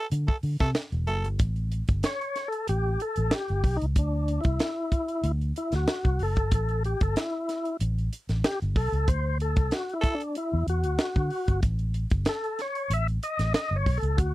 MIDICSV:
0, 0, Header, 1, 5, 480
1, 0, Start_track
1, 0, Tempo, 639659
1, 1049, Time_signature, 4, 2, 24, 8
1, 10764, End_track
2, 0, Start_track
2, 0, Title_t, "Tenor saxophone"
2, 0, Program_c, 0, 66
2, 206, Note_on_c, 0, 69, 93
2, 281, Note_off_c, 0, 69, 0
2, 453, Note_on_c, 0, 69, 111
2, 526, Note_off_c, 0, 69, 0
2, 804, Note_on_c, 0, 69, 100
2, 959, Note_off_c, 0, 69, 0
2, 7513, Note_on_c, 0, 69, 113
2, 7671, Note_off_c, 0, 69, 0
2, 10764, End_track
3, 0, Start_track
3, 0, Title_t, "Tonewheel organ"
3, 0, Program_c, 1, 16
3, 1543, Note_on_c, 1, 73, 96
3, 1862, Note_on_c, 1, 69, 82
3, 1866, Note_off_c, 1, 73, 0
3, 2005, Note_off_c, 1, 69, 0
3, 2020, Note_on_c, 1, 67, 93
3, 2263, Note_off_c, 1, 67, 0
3, 2266, Note_on_c, 1, 69, 87
3, 2505, Note_off_c, 1, 69, 0
3, 2508, Note_on_c, 1, 67, 87
3, 2826, Note_on_c, 1, 63, 85
3, 2829, Note_off_c, 1, 67, 0
3, 2895, Note_off_c, 1, 63, 0
3, 2991, Note_on_c, 1, 62, 85
3, 3306, Note_on_c, 1, 64, 85
3, 3311, Note_off_c, 1, 62, 0
3, 3990, Note_off_c, 1, 64, 0
3, 4184, Note_on_c, 1, 64, 75
3, 4309, Note_off_c, 1, 64, 0
3, 4319, Note_on_c, 1, 66, 86
3, 4672, Note_off_c, 1, 66, 0
3, 4674, Note_on_c, 1, 69, 90
3, 4899, Note_off_c, 1, 69, 0
3, 4908, Note_on_c, 1, 69, 90
3, 5124, Note_off_c, 1, 69, 0
3, 5144, Note_on_c, 1, 67, 82
3, 5269, Note_off_c, 1, 67, 0
3, 5274, Note_on_c, 1, 69, 84
3, 5372, Note_off_c, 1, 69, 0
3, 5385, Note_on_c, 1, 64, 81
3, 5829, Note_off_c, 1, 64, 0
3, 6344, Note_on_c, 1, 67, 100
3, 6449, Note_off_c, 1, 67, 0
3, 6579, Note_on_c, 1, 69, 106
3, 6815, Note_on_c, 1, 72, 105
3, 6822, Note_off_c, 1, 69, 0
3, 7036, Note_off_c, 1, 72, 0
3, 7065, Note_on_c, 1, 69, 95
3, 7301, Note_on_c, 1, 66, 96
3, 7305, Note_off_c, 1, 69, 0
3, 7455, Note_on_c, 1, 64, 78
3, 7461, Note_off_c, 1, 66, 0
3, 7613, Note_on_c, 1, 62, 84
3, 7618, Note_off_c, 1, 64, 0
3, 7776, Note_off_c, 1, 62, 0
3, 7786, Note_on_c, 1, 64, 93
3, 8002, Note_off_c, 1, 64, 0
3, 8026, Note_on_c, 1, 66, 91
3, 8707, Note_off_c, 1, 66, 0
3, 9222, Note_on_c, 1, 69, 98
3, 9462, Note_off_c, 1, 69, 0
3, 9467, Note_on_c, 1, 73, 95
3, 9704, Note_off_c, 1, 73, 0
3, 9705, Note_on_c, 1, 76, 99
3, 9809, Note_off_c, 1, 76, 0
3, 9931, Note_on_c, 1, 75, 92
3, 10152, Note_off_c, 1, 75, 0
3, 10172, Note_on_c, 1, 75, 110
3, 10324, Note_on_c, 1, 73, 99
3, 10333, Note_off_c, 1, 75, 0
3, 10487, Note_on_c, 1, 69, 87
3, 10490, Note_off_c, 1, 73, 0
3, 10634, Note_on_c, 1, 66, 93
3, 10651, Note_off_c, 1, 69, 0
3, 10764, Note_off_c, 1, 66, 0
3, 10764, End_track
4, 0, Start_track
4, 0, Title_t, "Fingered electric bass"
4, 0, Program_c, 2, 33
4, 89, Note_on_c, 2, 50, 100
4, 196, Note_off_c, 2, 50, 0
4, 325, Note_on_c, 2, 50, 85
4, 434, Note_off_c, 2, 50, 0
4, 452, Note_on_c, 2, 48, 88
4, 548, Note_off_c, 2, 48, 0
4, 692, Note_on_c, 2, 28, 89
4, 811, Note_off_c, 2, 28, 0
4, 811, Note_on_c, 2, 30, 83
4, 938, Note_off_c, 2, 30, 0
4, 938, Note_on_c, 2, 31, 94
4, 1033, Note_off_c, 2, 31, 0
4, 1049, Note_on_c, 2, 33, 87
4, 1359, Note_off_c, 2, 33, 0
4, 1416, Note_on_c, 2, 31, 90
4, 1512, Note_off_c, 2, 31, 0
4, 2019, Note_on_c, 2, 33, 102
4, 2218, Note_off_c, 2, 33, 0
4, 2383, Note_on_c, 2, 33, 96
4, 2476, Note_off_c, 2, 33, 0
4, 2626, Note_on_c, 2, 31, 85
4, 2718, Note_off_c, 2, 31, 0
4, 2735, Note_on_c, 2, 35, 92
4, 2841, Note_off_c, 2, 35, 0
4, 2867, Note_on_c, 2, 37, 85
4, 2959, Note_off_c, 2, 37, 0
4, 2977, Note_on_c, 2, 38, 99
4, 3285, Note_off_c, 2, 38, 0
4, 3338, Note_on_c, 2, 36, 82
4, 3434, Note_off_c, 2, 36, 0
4, 3929, Note_on_c, 2, 38, 97
4, 4133, Note_off_c, 2, 38, 0
4, 4297, Note_on_c, 2, 38, 96
4, 4393, Note_off_c, 2, 38, 0
4, 4540, Note_on_c, 2, 36, 100
4, 4635, Note_off_c, 2, 36, 0
4, 4653, Note_on_c, 2, 30, 82
4, 4781, Note_off_c, 2, 30, 0
4, 4781, Note_on_c, 2, 31, 92
4, 4875, Note_off_c, 2, 31, 0
4, 4893, Note_on_c, 2, 33, 95
4, 5203, Note_off_c, 2, 33, 0
4, 5264, Note_on_c, 2, 31, 85
4, 5357, Note_off_c, 2, 31, 0
4, 5861, Note_on_c, 2, 33, 105
4, 6060, Note_off_c, 2, 33, 0
4, 6223, Note_on_c, 2, 33, 102
4, 6316, Note_off_c, 2, 33, 0
4, 6469, Note_on_c, 2, 31, 90
4, 6560, Note_off_c, 2, 31, 0
4, 6578, Note_on_c, 2, 35, 91
4, 6682, Note_off_c, 2, 35, 0
4, 6696, Note_on_c, 2, 37, 89
4, 6792, Note_off_c, 2, 37, 0
4, 6815, Note_on_c, 2, 38, 100
4, 7179, Note_on_c, 2, 36, 80
4, 7191, Note_off_c, 2, 38, 0
4, 7274, Note_off_c, 2, 36, 0
4, 7905, Note_on_c, 2, 40, 94
4, 7997, Note_off_c, 2, 40, 0
4, 8006, Note_on_c, 2, 40, 79
4, 8137, Note_off_c, 2, 40, 0
4, 8137, Note_on_c, 2, 38, 95
4, 8232, Note_off_c, 2, 38, 0
4, 8377, Note_on_c, 2, 50, 91
4, 8472, Note_off_c, 2, 50, 0
4, 8616, Note_on_c, 2, 31, 92
4, 8711, Note_off_c, 2, 31, 0
4, 8728, Note_on_c, 2, 33, 88
4, 9038, Note_off_c, 2, 33, 0
4, 9093, Note_on_c, 2, 31, 86
4, 9189, Note_off_c, 2, 31, 0
4, 9680, Note_on_c, 2, 33, 94
4, 9885, Note_off_c, 2, 33, 0
4, 10050, Note_on_c, 2, 33, 100
4, 10147, Note_off_c, 2, 33, 0
4, 10288, Note_on_c, 2, 31, 80
4, 10385, Note_off_c, 2, 31, 0
4, 10402, Note_on_c, 2, 35, 89
4, 10511, Note_off_c, 2, 35, 0
4, 10523, Note_on_c, 2, 37, 90
4, 10622, Note_off_c, 2, 37, 0
4, 10644, Note_on_c, 2, 38, 106
4, 10764, Note_off_c, 2, 38, 0
4, 10764, End_track
5, 0, Start_track
5, 0, Title_t, "Drums"
5, 87, Note_on_c, 9, 42, 89
5, 162, Note_off_c, 9, 42, 0
5, 213, Note_on_c, 9, 36, 83
5, 288, Note_off_c, 9, 36, 0
5, 322, Note_on_c, 9, 46, 61
5, 397, Note_off_c, 9, 46, 0
5, 446, Note_on_c, 9, 42, 46
5, 449, Note_on_c, 9, 38, 36
5, 453, Note_on_c, 9, 36, 96
5, 521, Note_off_c, 9, 42, 0
5, 524, Note_off_c, 9, 38, 0
5, 528, Note_off_c, 9, 36, 0
5, 561, Note_on_c, 9, 42, 78
5, 562, Note_on_c, 9, 38, 111
5, 636, Note_off_c, 9, 42, 0
5, 637, Note_off_c, 9, 38, 0
5, 692, Note_on_c, 9, 42, 36
5, 767, Note_off_c, 9, 42, 0
5, 805, Note_on_c, 9, 42, 72
5, 880, Note_off_c, 9, 42, 0
5, 934, Note_on_c, 9, 42, 51
5, 1009, Note_off_c, 9, 42, 0
5, 1044, Note_on_c, 9, 42, 100
5, 1048, Note_on_c, 9, 36, 102
5, 1119, Note_off_c, 9, 42, 0
5, 1123, Note_off_c, 9, 36, 0
5, 1171, Note_on_c, 9, 42, 31
5, 1246, Note_off_c, 9, 42, 0
5, 1288, Note_on_c, 9, 42, 75
5, 1363, Note_off_c, 9, 42, 0
5, 1408, Note_on_c, 9, 42, 49
5, 1416, Note_on_c, 9, 36, 95
5, 1483, Note_off_c, 9, 42, 0
5, 1491, Note_off_c, 9, 36, 0
5, 1523, Note_on_c, 9, 42, 104
5, 1529, Note_on_c, 9, 38, 110
5, 1598, Note_off_c, 9, 42, 0
5, 1605, Note_off_c, 9, 38, 0
5, 1661, Note_on_c, 9, 42, 36
5, 1736, Note_off_c, 9, 42, 0
5, 1768, Note_on_c, 9, 38, 39
5, 1768, Note_on_c, 9, 42, 73
5, 1843, Note_off_c, 9, 38, 0
5, 1843, Note_off_c, 9, 42, 0
5, 1894, Note_on_c, 9, 42, 49
5, 1969, Note_off_c, 9, 42, 0
5, 2008, Note_on_c, 9, 42, 87
5, 2083, Note_off_c, 9, 42, 0
5, 2251, Note_on_c, 9, 42, 66
5, 2326, Note_off_c, 9, 42, 0
5, 2370, Note_on_c, 9, 42, 48
5, 2445, Note_off_c, 9, 42, 0
5, 2485, Note_on_c, 9, 42, 82
5, 2486, Note_on_c, 9, 38, 122
5, 2560, Note_off_c, 9, 42, 0
5, 2561, Note_off_c, 9, 38, 0
5, 2614, Note_on_c, 9, 42, 36
5, 2689, Note_off_c, 9, 42, 0
5, 2730, Note_on_c, 9, 36, 93
5, 2730, Note_on_c, 9, 46, 68
5, 2805, Note_off_c, 9, 36, 0
5, 2805, Note_off_c, 9, 46, 0
5, 2863, Note_on_c, 9, 42, 53
5, 2938, Note_off_c, 9, 42, 0
5, 2969, Note_on_c, 9, 42, 104
5, 2972, Note_on_c, 9, 36, 104
5, 3044, Note_off_c, 9, 42, 0
5, 3047, Note_off_c, 9, 36, 0
5, 3213, Note_on_c, 9, 42, 79
5, 3288, Note_off_c, 9, 42, 0
5, 3329, Note_on_c, 9, 42, 49
5, 3338, Note_on_c, 9, 36, 92
5, 3404, Note_off_c, 9, 42, 0
5, 3413, Note_off_c, 9, 36, 0
5, 3448, Note_on_c, 9, 42, 99
5, 3454, Note_on_c, 9, 38, 124
5, 3523, Note_off_c, 9, 42, 0
5, 3529, Note_off_c, 9, 38, 0
5, 3690, Note_on_c, 9, 36, 86
5, 3691, Note_on_c, 9, 42, 72
5, 3766, Note_off_c, 9, 36, 0
5, 3766, Note_off_c, 9, 42, 0
5, 3815, Note_on_c, 9, 42, 45
5, 3890, Note_off_c, 9, 42, 0
5, 3929, Note_on_c, 9, 42, 87
5, 4004, Note_off_c, 9, 42, 0
5, 4063, Note_on_c, 9, 42, 33
5, 4138, Note_off_c, 9, 42, 0
5, 4173, Note_on_c, 9, 42, 65
5, 4248, Note_off_c, 9, 42, 0
5, 4291, Note_on_c, 9, 42, 50
5, 4294, Note_on_c, 9, 38, 34
5, 4366, Note_off_c, 9, 42, 0
5, 4369, Note_off_c, 9, 38, 0
5, 4409, Note_on_c, 9, 42, 75
5, 4410, Note_on_c, 9, 38, 114
5, 4484, Note_off_c, 9, 42, 0
5, 4485, Note_off_c, 9, 38, 0
5, 4538, Note_on_c, 9, 36, 97
5, 4538, Note_on_c, 9, 42, 31
5, 4613, Note_off_c, 9, 36, 0
5, 4614, Note_off_c, 9, 42, 0
5, 4647, Note_on_c, 9, 46, 77
5, 4722, Note_off_c, 9, 46, 0
5, 4773, Note_on_c, 9, 42, 51
5, 4779, Note_on_c, 9, 36, 89
5, 4848, Note_off_c, 9, 42, 0
5, 4854, Note_off_c, 9, 36, 0
5, 4888, Note_on_c, 9, 42, 99
5, 4891, Note_on_c, 9, 36, 116
5, 4963, Note_off_c, 9, 42, 0
5, 4966, Note_off_c, 9, 36, 0
5, 5018, Note_on_c, 9, 42, 34
5, 5093, Note_off_c, 9, 42, 0
5, 5136, Note_on_c, 9, 42, 79
5, 5211, Note_off_c, 9, 42, 0
5, 5257, Note_on_c, 9, 42, 52
5, 5262, Note_on_c, 9, 36, 97
5, 5332, Note_off_c, 9, 42, 0
5, 5337, Note_off_c, 9, 36, 0
5, 5373, Note_on_c, 9, 42, 97
5, 5380, Note_on_c, 9, 38, 106
5, 5449, Note_off_c, 9, 42, 0
5, 5455, Note_off_c, 9, 38, 0
5, 5620, Note_on_c, 9, 38, 34
5, 5620, Note_on_c, 9, 42, 66
5, 5695, Note_off_c, 9, 38, 0
5, 5695, Note_off_c, 9, 42, 0
5, 5743, Note_on_c, 9, 42, 48
5, 5818, Note_off_c, 9, 42, 0
5, 5856, Note_on_c, 9, 42, 84
5, 5931, Note_off_c, 9, 42, 0
5, 5991, Note_on_c, 9, 42, 32
5, 6066, Note_off_c, 9, 42, 0
5, 6098, Note_on_c, 9, 42, 69
5, 6173, Note_off_c, 9, 42, 0
5, 6220, Note_on_c, 9, 42, 46
5, 6222, Note_on_c, 9, 38, 36
5, 6295, Note_off_c, 9, 42, 0
5, 6298, Note_off_c, 9, 38, 0
5, 6335, Note_on_c, 9, 42, 84
5, 6336, Note_on_c, 9, 38, 114
5, 6410, Note_off_c, 9, 42, 0
5, 6411, Note_off_c, 9, 38, 0
5, 6468, Note_on_c, 9, 42, 36
5, 6543, Note_off_c, 9, 42, 0
5, 6572, Note_on_c, 9, 36, 103
5, 6576, Note_on_c, 9, 46, 71
5, 6647, Note_off_c, 9, 36, 0
5, 6651, Note_off_c, 9, 46, 0
5, 6704, Note_on_c, 9, 42, 54
5, 6779, Note_off_c, 9, 42, 0
5, 6811, Note_on_c, 9, 42, 92
5, 6813, Note_on_c, 9, 36, 99
5, 6886, Note_off_c, 9, 42, 0
5, 6888, Note_off_c, 9, 36, 0
5, 7055, Note_on_c, 9, 42, 78
5, 7131, Note_off_c, 9, 42, 0
5, 7176, Note_on_c, 9, 42, 53
5, 7179, Note_on_c, 9, 36, 107
5, 7251, Note_off_c, 9, 42, 0
5, 7254, Note_off_c, 9, 36, 0
5, 7289, Note_on_c, 9, 42, 99
5, 7295, Note_on_c, 9, 38, 109
5, 7364, Note_off_c, 9, 42, 0
5, 7370, Note_off_c, 9, 38, 0
5, 7425, Note_on_c, 9, 42, 40
5, 7500, Note_off_c, 9, 42, 0
5, 7530, Note_on_c, 9, 36, 88
5, 7531, Note_on_c, 9, 42, 67
5, 7605, Note_off_c, 9, 36, 0
5, 7606, Note_off_c, 9, 42, 0
5, 7658, Note_on_c, 9, 42, 51
5, 7733, Note_off_c, 9, 42, 0
5, 7769, Note_on_c, 9, 42, 83
5, 7844, Note_off_c, 9, 42, 0
5, 8012, Note_on_c, 9, 42, 66
5, 8087, Note_off_c, 9, 42, 0
5, 8131, Note_on_c, 9, 42, 53
5, 8206, Note_off_c, 9, 42, 0
5, 8244, Note_on_c, 9, 42, 76
5, 8245, Note_on_c, 9, 38, 118
5, 8319, Note_off_c, 9, 42, 0
5, 8320, Note_off_c, 9, 38, 0
5, 8370, Note_on_c, 9, 42, 32
5, 8374, Note_on_c, 9, 36, 94
5, 8446, Note_off_c, 9, 42, 0
5, 8449, Note_off_c, 9, 36, 0
5, 8483, Note_on_c, 9, 46, 71
5, 8558, Note_off_c, 9, 46, 0
5, 8613, Note_on_c, 9, 42, 51
5, 8615, Note_on_c, 9, 36, 86
5, 8688, Note_off_c, 9, 42, 0
5, 8690, Note_off_c, 9, 36, 0
5, 8724, Note_on_c, 9, 42, 95
5, 8726, Note_on_c, 9, 36, 118
5, 8799, Note_off_c, 9, 42, 0
5, 8801, Note_off_c, 9, 36, 0
5, 8846, Note_on_c, 9, 42, 37
5, 8921, Note_off_c, 9, 42, 0
5, 8961, Note_on_c, 9, 42, 72
5, 9036, Note_off_c, 9, 42, 0
5, 9082, Note_on_c, 9, 42, 51
5, 9091, Note_on_c, 9, 36, 96
5, 9157, Note_off_c, 9, 42, 0
5, 9166, Note_off_c, 9, 36, 0
5, 9194, Note_on_c, 9, 42, 99
5, 9200, Note_on_c, 9, 38, 126
5, 9269, Note_off_c, 9, 42, 0
5, 9275, Note_off_c, 9, 38, 0
5, 9333, Note_on_c, 9, 42, 40
5, 9409, Note_off_c, 9, 42, 0
5, 9446, Note_on_c, 9, 38, 38
5, 9446, Note_on_c, 9, 42, 74
5, 9521, Note_off_c, 9, 38, 0
5, 9521, Note_off_c, 9, 42, 0
5, 9570, Note_on_c, 9, 42, 43
5, 9645, Note_off_c, 9, 42, 0
5, 9685, Note_on_c, 9, 42, 89
5, 9760, Note_off_c, 9, 42, 0
5, 9815, Note_on_c, 9, 42, 33
5, 9890, Note_off_c, 9, 42, 0
5, 9926, Note_on_c, 9, 42, 63
5, 10001, Note_off_c, 9, 42, 0
5, 10049, Note_on_c, 9, 42, 51
5, 10052, Note_on_c, 9, 38, 35
5, 10124, Note_off_c, 9, 42, 0
5, 10127, Note_off_c, 9, 38, 0
5, 10162, Note_on_c, 9, 42, 79
5, 10163, Note_on_c, 9, 38, 102
5, 10237, Note_off_c, 9, 42, 0
5, 10238, Note_off_c, 9, 38, 0
5, 10403, Note_on_c, 9, 36, 84
5, 10406, Note_on_c, 9, 46, 80
5, 10478, Note_off_c, 9, 36, 0
5, 10481, Note_off_c, 9, 46, 0
5, 10530, Note_on_c, 9, 42, 56
5, 10605, Note_off_c, 9, 42, 0
5, 10642, Note_on_c, 9, 42, 96
5, 10643, Note_on_c, 9, 36, 99
5, 10717, Note_off_c, 9, 42, 0
5, 10718, Note_off_c, 9, 36, 0
5, 10764, End_track
0, 0, End_of_file